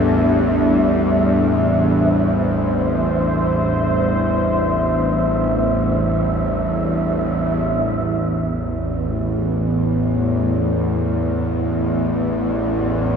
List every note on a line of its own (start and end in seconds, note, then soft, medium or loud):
0.00 7.69 A1 medium
0.00 7.68 E2 medium
0.00 7.67 A2 medium
0.00 7.68 G3 medium
0.00 7.68 D4 medium
0.00 7.67 A4 medium
0.00 1.22 A#4 medium
0.00 7.72 E5 medium
0.90 7.68 C5 medium
7.69 13.16 A1 medium
7.69 13.16 E2 medium